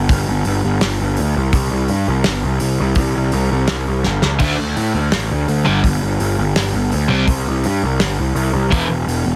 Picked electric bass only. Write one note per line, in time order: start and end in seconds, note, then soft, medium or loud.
0.10 0.27 G1 medium
0.28 0.45 G1 medium
0.45 0.63 G1 medium
0.64 0.81 G1 medium
0.83 0.99 G1 medium
1.01 1.17 G1 medium
1.19 1.35 D2 medium
1.36 1.53 C2 loud
1.53 1.70 C2 loud
1.71 1.88 C2 medium
1.89 2.06 G2 medium
2.08 2.25 C2 loud
2.26 2.42 G1 medium
2.44 2.60 C2 medium
2.61 2.78 C2 medium
2.80 2.96 C2 loud
2.96 3.14 C2 medium
3.16 3.32 C2 medium
3.33 3.50 C2 medium
3.51 3.68 C2 medium
3.69 3.86 C2 medium
3.88 4.04 C2 medium
4.05 4.22 G1 medium
4.23 4.40 C#2 medium
4.40 4.58 D2 medium
4.58 4.75 D2 medium
4.76 4.93 A2 medium
4.94 5.12 D2 medium
5.13 5.30 A1 medium
5.31 5.47 D2 medium
5.48 5.65 D2 medium
5.67 5.84 G1 medium
5.84 6.02 G1 loud
6.03 6.19 G1 medium
6.20 6.37 G1 medium
6.38 6.55 G1 medium
6.56 6.73 G1 medium
6.74 6.91 G1 medium
6.93 7.10 D2 medium
7.10 7.28 C2 medium
7.28 7.46 C2 medium
7.48 7.64 C2 medium
7.66 7.82 G2 medium
7.83 8.00 C2 medium
8.01 8.18 G1 medium
8.19 8.34 C2 medium
8.35 8.52 C2 medium
8.53 8.71 C2 loud
8.72 8.89 E1 loud
8.89 9.06 E1 medium
9.07 9.25 E1 medium
9.26 9.36 E1 medium